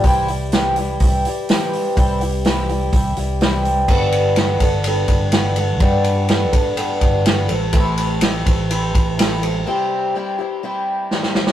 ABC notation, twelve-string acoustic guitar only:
X:1
M:4/4
L:1/8
Q:1/4=125
K:Gmix
V:1 name="Twelve-string acoustic guitar"
[C,E,G,EG] [G,EG] [C,E,G,EG] [G,EG] [E,G,EG] [G,EG] [C,E,G,EG]2 | [C,E,G,EG] [G,EG] [C,E,G,EG] [G,EG] [E,G,EG] [G,EG] [C,E,G,EG]2 | [G,B,DA]2 [G,B,DA] [B,DA] [G,B,DA]2 [G,B,DA] [B,DA] | [G,B,DA]2 [G,B,DA] [B,DA] [G,B,DA]2 [G,B,DA] [CEA] |
[A,,E,CEA]2 [E,CEA] [CEA] [E,CEA]2 [E,CEA] [CEA] | [C,G,CEG]2 [G,CEG] [CEG] [G,CEG]2 [G,CEG] [CEG] |]